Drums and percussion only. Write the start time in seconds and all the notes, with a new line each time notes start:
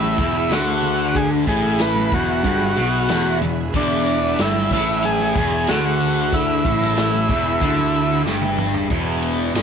0.02 high conga
0.18 kick, closed hi-hat
0.50 snare, closed hi-hat
0.83 closed hi-hat, low conga
1.15 kick, closed hi-hat
1.47 kick, closed hi-hat
1.79 snare, closed hi-hat
1.96 high conga
2.12 kick, closed hi-hat, low conga
2.44 kick, closed hi-hat, high conga
2.61 high conga
2.77 closed hi-hat
3.09 snare, closed hi-hat
3.41 closed hi-hat, low conga
3.74 kick, closed hi-hat
4.06 closed hi-hat
4.39 snare, closed hi-hat
4.55 high conga
4.71 kick, closed hi-hat, low conga
5.02 closed hi-hat, high conga
5.20 high conga
5.35 kick, closed hi-hat
5.67 snare, closed hi-hat
6.00 closed hi-hat, low conga
6.33 kick, closed hi-hat
6.65 kick, closed hi-hat, low conga
6.82 snare, high conga
6.97 snare, closed hi-hat
7.14 high conga
7.29 kick, closed hi-hat
7.61 kick, closed hi-hat
7.79 high conga
7.94 closed hi-hat
8.26 snare
8.42 high tom
8.58 mid tom, low conga
8.74 floor tom
8.90 kick, crash
9.22 ride
9.55 snare, ride